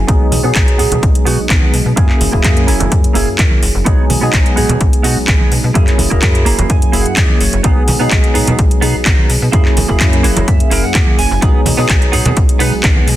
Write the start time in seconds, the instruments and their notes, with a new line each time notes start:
0.07 fm bass B1, tine electric piano F#3 G#3 B3 D#4 G#4, clean electric guitar B3 D#4 G#4, kick, closed hi-hat
0.32 fm bass B2, open hi-hat, tambourine, high conga, low conga
0.43 fm bass B2, tine electric piano F#3 G#3 B3 D#4 G#4, clean electric guitar B3 D#4 G#4, tambourine
0.55 fm bass B1, kick, clap, closed hi-hat
0.67 muted clean electric guitar stroke, closed hi-hat
0.78 fm bass B2, clean electric guitar B3 D#4 G#4, open hi-hat
0.91 fm bass B2, closed hi-hat, tambourine, high conga, low conga
1.03 fm bass B1, kick, closed hi-hat
1.15 closed hi-hat
1.25 fm bass B2, clean electric guitar B3 D#4 F#4, open hi-hat
1.39 fm bass B1
1.49 fm bass B1, clean electric guitar B3 D#4 G#4, kick, clap, closed hi-hat
1.62 high conga
1.73 fm bass B2, open hi-hat
1.86 fm bass B2, tambourine
1.96 fm bass F#2, tine electric piano F#3 A#3 C#4 E4 G#4, clean electric guitar A#3 E4 G#4, kick, closed hi-hat
2.09 clap
2.20 fm bass F#1, open hi-hat, tambourine, high conga, low conga
2.32 fm bass F#1, tine electric piano F#3 A#3 C#4 E4 G#4, clean electric guitar A#3 E4 G#4, kick
2.44 fm bass F#2, kick, clap, closed hi-hat
2.56 muted clean electric guitar stroke, closed hi-hat
2.67 fm bass F#1, clean electric guitar A#3 E4 G#4, open hi-hat
2.80 fm bass F#1, closed hi-hat, tambourine, high conga, low conga
2.91 fm bass F#2, kick, closed hi-hat, tambourine
3.04 closed hi-hat
3.14 fm bass F#1, clean electric guitar A#3 E4 G#4, open hi-hat
3.27 fm bass F#2, tambourine
3.38 fm bass F#2, clean electric guitar A#3 E4 A#4, kick, clap, closed hi-hat
3.51 high conga
3.63 fm bass F#1, open hi-hat, tambourine
3.75 fm bass F#1, tambourine
3.85 fm bass B1, tine electric piano F#3 G#3 B3 D#4 G#4, clean electric guitar B3 D#4 G#4, kick, closed hi-hat
4.10 fm bass B2, open hi-hat, tambourine, high conga, low conga
4.21 fm bass B2, tine electric piano F#3 G#3 B3 D#4 G#4, clean electric guitar B3 D#4 G#4, tambourine
4.33 fm bass B1, kick, clap, closed hi-hat
4.45 muted clean electric guitar stroke, closed hi-hat
4.56 fm bass B2, clean electric guitar B3 D#4 G#4, open hi-hat
4.69 fm bass B2, closed hi-hat, tambourine, high conga, low conga
4.81 fm bass B1, kick, closed hi-hat
4.93 closed hi-hat
5.03 fm bass B2, clean electric guitar B3 D#4 F#4, open hi-hat, tambourine
5.17 fm bass B1, tambourine
5.27 fm bass B1, clean electric guitar B3 D#4 G#4, kick, clap, closed hi-hat
5.40 high conga
5.51 fm bass B2, open hi-hat, tambourine
5.63 fm bass B2, tambourine
5.74 fm bass F#2, tine electric piano F#3 A#3 C#4 E4 G#4, clean electric guitar A#3 E4 G#4, kick, closed hi-hat
5.87 clap, closed hi-hat
5.98 fm bass F#1, open hi-hat, tambourine, high conga, low conga
6.10 fm bass F#1, tine electric piano F#3 A#3 C#4 E4 G#4, clean electric guitar A#3 E4 A#4, kick, closed hi-hat
6.22 fm bass F#2, kick, clap, closed hi-hat
6.34 muted clean electric guitar stroke, closed hi-hat
6.45 fm bass F#1, clean electric guitar A#3 E4 G#4 A#5, open hi-hat, tambourine
6.58 fm bass F#1, closed hi-hat, tambourine, high conga, low conga
6.70 fm bass F#2, clean electric guitar G#5, kick, closed hi-hat
6.82 closed hi-hat
6.92 fm bass F#1, clean electric guitar A#3 E4 G#4, open hi-hat, tambourine
7.01 clean electric guitar F#5
7.06 fm bass F#2, closed hi-hat, tambourine
7.16 fm bass F#2, clean electric guitar A#3 E4 G#4 D#5, kick, clap, closed hi-hat
7.29 high conga
7.41 fm bass F#1, clean electric guitar C#5, open hi-hat, tambourine
7.53 fm bass F#1, closed hi-hat, tambourine
7.63 fm bass B1, tine electric piano F#3 G#3 B3 D#4 G#4, clean electric guitar B3 D#4 G#4, kick, closed hi-hat
7.88 fm bass B2, open hi-hat, tambourine, high conga, low conga
7.99 fm bass B2, tine electric piano F#3 G#3 B3 D#4 G#4, clean electric guitar B3 D#4 G#4, tambourine
8.11 fm bass B1, kick, clap, closed hi-hat
8.23 muted clean electric guitar stroke, closed hi-hat
8.34 fm bass B2, clean electric guitar B3 D#4 G#4, open hi-hat, tambourine
8.47 fm bass B2, closed hi-hat, tambourine, high conga, low conga
8.59 fm bass B1, kick, closed hi-hat, tambourine
8.71 closed hi-hat
8.81 fm bass B2, clean electric guitar B3 D#4 G#4, open hi-hat, tambourine
8.95 fm bass B1, tambourine
9.05 fm bass B1, clean electric guitar B3 D#4 F#4, kick, clap, closed hi-hat
9.19 high conga
9.29 fm bass B2, open hi-hat, tambourine
9.42 fm bass B2, tambourine
9.52 fm bass F#2, tine electric piano F#3 A#3 C#4 E4 G#4, clean electric guitar A#3 E4 G#4, kick, closed hi-hat
9.65 clap
9.77 fm bass F#1, open hi-hat, tambourine, high conga, low conga
9.88 fm bass F#1, tine electric piano F#3 A#3 C#4 E4 G#4, clean electric guitar A#3 E4 G#4, kick
10.00 fm bass F#2, kick, clap, closed hi-hat
10.12 muted clean electric guitar stroke, closed hi-hat
10.23 fm bass F#1, clean electric guitar A#3 E4 F#4 C#5, open hi-hat, tambourine
10.36 fm bass F#1, closed hi-hat, tambourine, high conga, low conga
10.48 fm bass F#2, clean electric guitar E5, kick, closed hi-hat
10.60 closed hi-hat
10.70 fm bass F#1, clean electric guitar A#3 E4 A#4, open hi-hat, tambourine
10.84 fm bass F#2, clean electric guitar F#5, tambourine
10.94 fm bass F#2, clean electric guitar A#3 E4 G#4, kick, clap, closed hi-hat
11.07 high conga
11.18 fm bass F#1, clean electric guitar G#5, open hi-hat, tambourine
11.31 fm bass F#1, tambourine
11.41 fm bass B1, tine electric piano F#3 G#3 B3 D#4 G#4, clean electric guitar B3 D#4 G#4, kick, closed hi-hat, tambourine
11.65 fm bass B2, open hi-hat, tambourine, high conga, low conga
11.77 fm bass B2, tine electric piano F#3 G#3 B3 D#4 G#4, clean electric guitar B3 D#4 G#4, tambourine
11.89 fm bass B1, kick, clap, closed hi-hat
12.01 muted clean electric guitar stroke, closed hi-hat
12.12 fm bass B2, clean electric guitar B3 D#4 G#4, open hi-hat, tambourine
12.25 fm bass B2, closed hi-hat, tambourine, high conga, low conga
12.36 fm bass B1, kick, closed hi-hat, tambourine
12.49 closed hi-hat
12.59 fm bass B2, clean electric guitar B3 D#4 B4, open hi-hat, tambourine
12.73 fm bass B1, tambourine
12.83 fm bass B1, clean electric guitar B3 D#4 G#4, kick, clap, closed hi-hat
12.96 high conga
13.08 fm bass B2, open hi-hat, tambourine